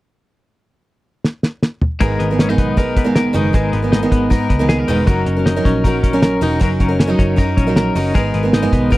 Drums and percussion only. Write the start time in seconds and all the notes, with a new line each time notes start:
1.25 snare
1.43 snare
1.63 snare
1.82 mid tom
2.01 kick, closed hi-hat
2.20 closed hi-hat
2.39 snare, closed hi-hat
2.58 kick, closed hi-hat
2.77 kick, closed hi-hat
2.97 kick, closed hi-hat
3.16 snare, closed hi-hat
3.34 closed hi-hat
3.54 kick, closed hi-hat
3.73 closed hi-hat
3.93 snare, closed hi-hat
4.12 kick, closed hi-hat
4.31 kick, closed hi-hat
4.50 kick, closed hi-hat
4.69 snare, closed hi-hat
4.88 closed hi-hat
5.07 kick, closed hi-hat
5.26 closed hi-hat
5.46 snare, closed hi-hat
5.65 kick, closed hi-hat
5.84 kick, closed hi-hat
6.04 kick, closed hi-hat
6.22 snare, closed hi-hat
6.42 closed hi-hat
6.61 kick, closed hi-hat
6.80 kick, closed hi-hat
7.00 snare, closed hi-hat
7.19 kick, closed hi-hat
7.38 kick, closed hi-hat
7.57 kick, closed hi-hat
7.76 snare, closed hi-hat
7.96 open hi-hat
8.15 kick, closed hi-hat
8.34 closed hi-hat
8.53 snare, closed hi-hat
8.73 kick, closed hi-hat
8.92 kick, closed hi-hat